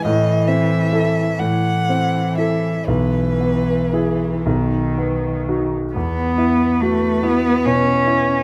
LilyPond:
<<
  \new Staff \with { instrumentName = "Violin" } { \time 6/8 \key a \lydian \tempo 4. = 43 dis''8 e''4 fis''4 e''8 | b'4. r4. | b'2. | }
  \new Staff \with { instrumentName = "Grand piano" } { \time 6/8 \key a \lydian a,8 c'8 <e' a'>8 a,8 c'8 <e' a'>8 | b,,8 b8 <e' gis'>8 b,,8 b8 <dis' fis'>8 | e,8 e'8 fis'8 e'8 b,8 e'8 | }
  \new Staff \with { instrumentName = "Cello" } { \clef bass \time 6/8 \key a \lydian e4. e4. | e4. dis4~ dis16 r16 | b4 a8 b8 cis'4 | }
>>